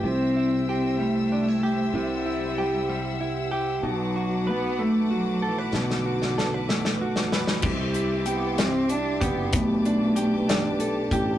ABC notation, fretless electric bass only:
X:1
M:6/8
L:1/8
Q:3/8=63
K:Clyd
V:1 name="Fretless electric bass" clef=bass
C,,6 | C,,6 | B,,,6 | B,,,6 |
C,,4- C,, F,,, | B,,,4- B,,, A,,, |]